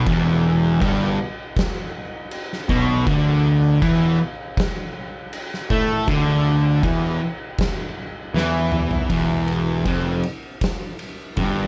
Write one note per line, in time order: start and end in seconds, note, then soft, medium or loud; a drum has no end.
0.07 0.78 E1 medium
0.07 0.81 E2 loud
0.07 kick loud
0.07 crash medium
0.81 1.16 G1 medium
0.81 1.18 G2 loud
0.81 kick loud
0.81 crash medium
1.56 kick loud
1.56 snare loud
1.56 crash medium
2.31 crash medium
2.53 snare soft
2.69 3.04 B1 medium
2.69 3.06 B2 loud
2.69 kick loud
3.06 3.78 D2 loud
3.06 3.81 D3 loud
3.06 kick loud
3.06 crash medium
3.82 4.17 E2 loud
3.82 4.19 E3 loud
3.82 kick loud
3.82 crash medium
4.57 kick loud
4.57 snare loud
4.57 crash medium
5.33 crash medium
5.54 snare soft
5.70 6.05 A2 medium
5.70 6.07 A3 loud
5.70 kick loud
6.08 6.79 D2 medium
6.08 6.82 D3 loud
6.08 kick loud
6.08 crash medium
6.83 7.18 E2 loud
6.83 7.20 E3 loud
6.83 kick loud
6.83 crash medium
7.58 kick loud
7.58 snare loud
7.58 crash medium
8.34 9.06 E2 loud
8.34 9.09 E3 loud
8.34 snare medium
8.72 mid tom medium
8.91 floor tom medium
9.10 9.81 E1 loud
9.10 9.84 E2 loud
9.10 kick loud
9.10 ride medium
9.48 ride medium
9.86 10.21 F1 medium
9.86 10.22 F2 loud
9.86 kick loud
9.86 ride medium
10.23 ride medium
10.61 kick medium
10.61 snare loud
10.61 ride medium
10.99 ride medium
11.37 11.67 G1 medium
11.37 11.67 G2 loud
11.37 kick loud
11.37 ride medium